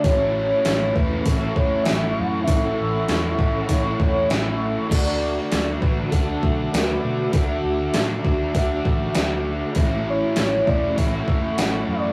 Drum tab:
CC |--------|--------|x-------|--------|
HH |o-o-o-o-|o-o-o-o-|--o-o-o-|o-o-o-o-|
SD |--o---o-|--o---o-|--o---o-|--o---o-|
BD |o--ooo--|o--ooo--|o--ooo--|o--ooo--|

CC |--------|
HH |o-o-o-o-|
SD |--o---o-|
BD |o--ooo--|